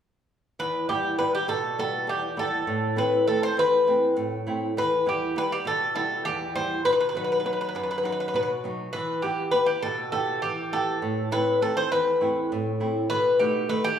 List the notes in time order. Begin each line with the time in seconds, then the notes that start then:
0.59 E2 B4
0.89 G3 B3 E4 G4
1.19 G3 B3 E4 B4
1.35 G4
1.48 B2 A4
1.78 G3 B3 E4 A4
2.07 E2 G4
2.37 G3 B3 E4 A4
2.67 A2
2.96 A3 C4 E4 B4
3.27 A3 C4 E4 A4
3.43 C5
3.57 E2 B4
3.87 A3 C4 E4
4.17 A2
4.47 A3 C4 E4
4.77 E2 B4
5.06 G3 B3 E4 G4
5.36 G3 B3 E4 B4
5.52 G4
5.65 B2 A4
5.95 G3 B3 E4 A4
6.25 E2 G4
6.55 G3 B3 E4 C5
6.85 B2 B4
6.93 B4
7.00 B4
7.09 B4
7.15 F#3 B3 D#4 B4
7.24 B4
7.32 B4
7.40 B4
7.44 F#3 B3 D#4 B4
7.53 B4
7.61 B4
7.69 B4
7.75 F#2 B4
7.83 B4
7.91 B4
7.98 B4
8.03 F#3 B3 D#4 B4
8.12 B4
8.20 B4
8.28 B4
8.34 B2 B4
8.43 B4
8.64 F#3 B3 D#4
8.93 E3 B4
9.22 B3 E4 G4
9.51 B3 E4 G4 B4
9.66 G4
9.82 B2 A4
10.12 B3 E4 G4 A4
10.42 E3 G4
10.72 B3 E4 G4 A4
11.02 A2
11.31 A3 C4 E4 B4
11.61 A3 C4 E4 A4
11.77 C5
11.92 E2 B4
12.21 A3 C4 E4
12.52 A2
12.80 A3 C4 E4
13.10 B2 B4
13.39 A3 B3 D#4 G4
13.69 A3 B3 D#4 B4
13.84 G4